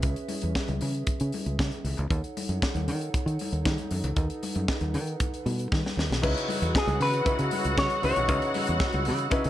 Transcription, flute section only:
Already playing: C#4 G#4 B4 E5
2.10 D#4 A4 C#5 F#5
4.16 B4 F#5
6.22 G#4 C#5 B5 E6

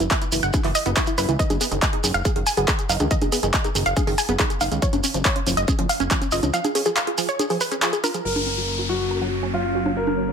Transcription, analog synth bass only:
0.00 F#1
0.32 F#1
0.43 F#1
0.64 F#1
0.86 F#1
1.18 F#1
1.29 C#2
1.50 F#1
1.71 F#1
2.04 F#1
2.14 F#1
2.36 F#1
2.57 F#1
2.89 F#1
3.00 C#2
3.22 F#1
3.43 F#1
3.75 F#1
3.86 F#1
4.07 F#1
4.29 F#1
4.61 F#1
4.71 C#2
4.93 F#1
5.14 F#1
5.46 F#1
5.57 F#1
5.79 F#1
6.00 F#1
6.32 F#1
6.43 C#2
8.25 F#1

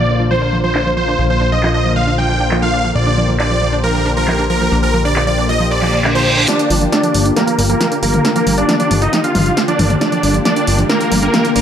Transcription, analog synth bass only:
Already playing: A#1
1.19 A#1
2.95 A#1
4.72 A#1
6.70 G1
7.14 G1
7.59 G1
8.03 G1
8.47 G1
8.91 G1
9.35 G1
9.79 G1
10.23 G1
10.67 G1
11.12 G1
11.56 G1

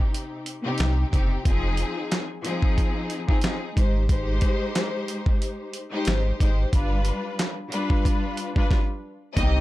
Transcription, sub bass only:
0.80 C2
1.13 F#1
1.46 F1
3.77 G#1
6.07 G#1
6.41 G#1
6.73 G1
9.37 C2

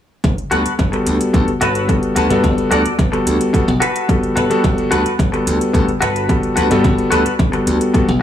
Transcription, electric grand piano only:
0.51 G3 B3 F#4 A4
0.92 G3 B3 F#4 A4
1.33 G3 B3 F#4 A4
1.88 G3 B3 F#4 A4
2.29 G3 B3 F#4 A4
2.70 G3 B3 F#4 A4
3.11 G3 B3 F#4 A4
3.53 G3 B3 F#4 A4
4.08 G3 B3 F#4 A4
4.50 G3 B3 F#4 A4
4.90 G3 B3 F#4 A4
5.32 G3 B3 F#4 A4
5.73 G3 B3 F#4 A4
6.29 G3 B3 F#4 A4
6.70 G3 B3 F#4 A4
7.11 G3 B3 F#4 A4
7.53 G3 B3 F#4 A4
7.94 G3 B3 F#4 A4

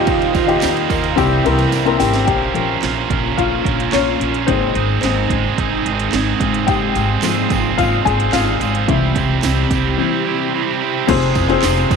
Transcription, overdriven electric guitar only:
0.07 D#3 G3 A#3 D#4 F4
0.34 A#3 D#4 F4
0.62 D#3 G3 A#3 D#4 F4
0.89 A#3 D#4 F4
1.16 G3 C4 E4 G4
1.43 C4 E4 G4
1.71 C3 G3 C4 E4 G4
1.98 C4 E4 G4
2.26 A#2 F3 C#4 F4 A#4
2.53 C#4 F4 A#4
2.81 A#2 F3 C#4 F4 A#4
3.09 C#4 F4 A#4
3.36 F3 C#4 F4 A#4
3.64 C#4 F4 A#4
3.92 A#2 F3 C#4 F4 A#4
4.19 C#4 F4 A#4
4.47 G#2 D#3 G#3 C4 D#4 G#4
4.74 G#3 C4 D#4 G#4
5.02 G#2 D#3 G#3 C4 D#4 G#4
5.29 G#3 C4 D#4 G#4
5.57 G#3 C4 D#4 G#4
5.84 G#3 C4 D#4 G#4
6.12 G#2 D#3 G#3 C4 D#4 G#4
6.40 C4 F4 G#4
6.68 G#3 C4 F4 G#4
6.94 C4 F4 G#4
7.23 G#3 C4 F4 G#4
7.50 C4 F4 G#4
7.78 G#3 C4 F4 G#4
8.06 C4 F4 G#4
8.33 G#3 C4 F4 G#4
8.60 C4 F4 G#4
8.87 C3 G3 C4 E4 G4
9.15 C4 E4 G4
9.43 C3 G3 C4 E4 G4
9.70 C4 E4 G4
9.97 G3 C4 E4 G4
10.25 C4 E4 G4
10.53 C3 G3 C4 E4 G4
10.80 C4 E4 G4
11.08 F2 C3 F3 G#3 F4 G#4
11.36 F3 G#3 F4 G#4
11.63 F2 C3 F3 G#3 F4 G#4
11.91 G#3 F4 G#4

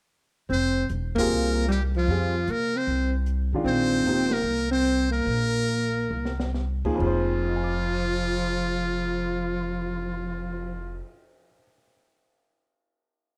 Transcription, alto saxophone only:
0.50 C4
1.15 A#3
1.68 G3
1.96 F3
2.50 A#3
2.76 C4
3.65 C4
4.31 A#3
4.71 C4
5.11 A#3
7.01 F3

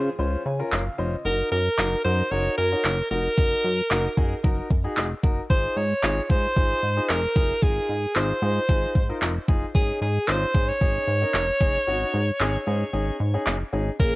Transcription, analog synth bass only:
0.19 C#2
0.46 C#3
0.72 F#1
0.99 F1
1.25 F#1
1.52 F#2
1.78 F#1
2.05 F#2
2.32 F#1
2.58 F#2
2.85 F#1
3.11 F1
3.38 F#1
3.64 F#2
3.91 F#1
4.17 F#2
4.44 F#1
4.70 F#2
4.97 F1
5.23 F#1
5.50 G#1
5.77 G#2
6.03 G#1
6.30 G#2
6.56 G#1
6.83 G#2
7.09 F1
7.36 F#1
7.62 G#1
7.89 G#2
8.16 G#1
8.42 G#2
8.69 G#1
8.95 G#2
9.22 F1
9.48 F#1
9.75 G#1
10.01 G#2
10.28 G#1
10.55 G#2
10.81 G#1
11.07 G#2
11.34 F1
11.61 F#1
11.87 G#1
12.14 G#2
12.40 G#1
12.67 G#2
12.93 G#1
13.20 G#2
13.47 F#1
13.73 G#1
14.00 A#1

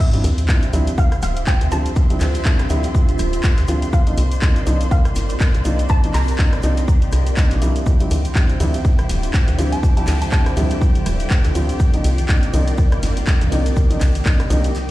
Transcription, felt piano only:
0.13 F3 G3 C4 D4 E4
0.49 F3 G3 C4 D4 E4
0.73 F3 G3 C4 D4 E4
1.72 F3 G3 C4 D4 F4
2.10 F3 G3 C4 D4 E4
2.46 F3 G3 C4 D4 E4
2.70 F3 G3 C4 D4 E4
3.68 F3 G3 C4 D4 F4
4.07 F3 A#3 C4 D4 D#4
4.42 F3 A#3 C4 D4 D#4
4.67 F3 A#3 C4 D4 D#4
5.65 F3 A#3 C4 D4 D#4
6.04 F3 A#3 C4 D4 D#4
6.39 F3 A#3 C4 D4 D#4
6.63 F3 A#3 C4 D4 D#4
7.37 F3 A#3 C4 D4 D#4
7.62 F3 G3 C4 D4 E4
8.00 F3 G3 C4 D4 E4
8.36 F3 G3 C4 D4 E4
8.60 F3 G3 C4 D4 E4
9.59 F3 G3 C4 D4 F4
9.97 F3 G3 C4 D4 E4
10.32 F3 G3 C4 D4 E4
10.57 F3 G3 C4 D4 E4
11.55 F3 G3 C4 D4 F4
11.94 F3 A#3 C4 D4 D#4
12.29 F3 A#3 C4 D4 D#4
12.54 F3 A#3 C4 D4 D#4
13.52 F3 A#3 C4 D4 D#4
13.90 F3 A#3 C4 D4 D#4
14.26 F3 A#3 C4 D4 D#4
14.50 F3 A#3 C4 D4 D#4

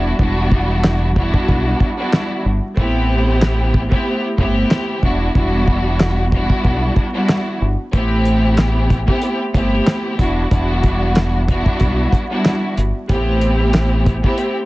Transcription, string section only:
Already playing: G3 B3 D4 E4 F#4
0.18 G3 B3 D4 E4 F#4
1.16 G3 B3 D4 E4 F#4
1.98 G3 B3 D4 E4 F#4
2.77 A3 B3 C4 E4 G4
3.90 A3 B3 C4 E4 G4
4.38 A3 B3 C4 E4 G4
5.03 G3 B3 D4 E4 F#4
5.35 G3 B3 D4 E4 F#4
6.32 G3 B3 D4 E4 F#4
7.14 G3 B3 D4 E4 F#4
7.93 A3 B3 C4 E4 G4
9.06 A3 B3 C4 E4 G4
9.54 A3 B3 C4 E4 G4
10.19 G3 B3 D4 E4 F#4
10.51 G3 B3 D4 E4 F#4
11.48 G3 B3 D4 E4 F#4
12.30 G3 B3 D4 E4 F#4
13.09 A3 B3 C4 E4 G4
14.23 A3 B3 C4 E4 G4

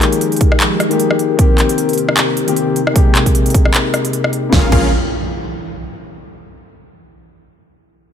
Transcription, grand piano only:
Already playing: D#3 G#3 A#3 G4
0.89 D#3 G#3 A#3 G4
1.37 D#3 A#3 C4
1.41 G4
2.47 D#3 A#3 C4 G4
2.94 C3 G#3 A#3
2.98 G4
4.50 C#3 G#3 A#3
4.55 F4
4.69 C#3 G#3
4.73 A#3 F4

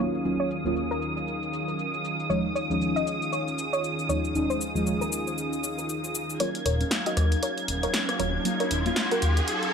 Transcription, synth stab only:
0.00 D#2 F#3 A#3 C#4 F4
0.24 D#2 F#3 A#3 C#4 F4
0.64 D#2 F#3 A#3 C#4 F4
2.29 D#2 F3 G#3 C#4 D#4
2.69 D#2 F3 G#3 C#4 D#4
4.09 D#2 F3 G#3 C#4 D#4
4.34 D#2 F3 G#3 C#4 D#4
4.74 D#2 F3 G#3 C#4 D#4
6.40 F#3 A#3 C#4 F4
6.80 F#3 A#3 C#4 F5
8.19 F#3 A#3 C#4 F4
8.45 F#3 A#3 C#4 F4
8.85 F#3 A#3 C#4 F4

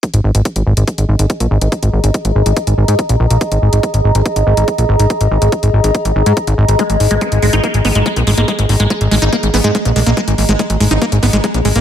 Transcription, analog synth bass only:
0.14 G#1
0.24 G#1
0.35 G#1
0.56 G#1
0.66 G#1
0.77 G#1
0.98 G#1
1.09 G#1
1.19 G#1
1.40 A#1
1.51 G#1
1.61 G#1
1.83 G#1
1.93 G#1
2.04 G#1
2.25 G#1
2.35 G#1
2.46 G#1
2.67 G#1
2.78 G#1
2.88 G#2
3.09 A#1
3.20 A#1
3.30 A#1
3.52 G#1
3.62 G#1
3.73 G#1
3.94 G#1
4.04 G#1
4.15 G#1
4.36 G#1
4.47 G#1
4.57 G#1
4.78 A#1
4.89 G#1
4.99 G#1
5.21 G#1
5.31 G#1
5.42 G#1
5.63 G#1
5.73 G#1
5.84 G#1
6.05 G#1
6.16 G#1
6.26 G#2
6.47 G#1
6.58 G#1
6.69 G#1
6.90 G#1
7.00 G#1
7.11 G#1
7.32 G#1
7.42 G#1
7.53 G#1
7.74 G#1
7.85 G#1
7.95 G#1
8.16 A#1
8.27 G#1
8.38 G#1
8.59 G#1
8.69 G#1
8.80 G#1
9.01 G#1
9.11 G#1
9.22 G#1
9.43 G#1
9.54 G#1
9.64 G#2
9.85 A#1
9.96 A#1
10.06 A#1
10.28 G#1
10.38 G#1
10.49 G#1
10.70 G#1
10.80 G#1
10.91 G#1
11.12 G#1
11.23 G#1
11.33 G#1
11.54 A#1
11.65 G#1
11.76 G#1

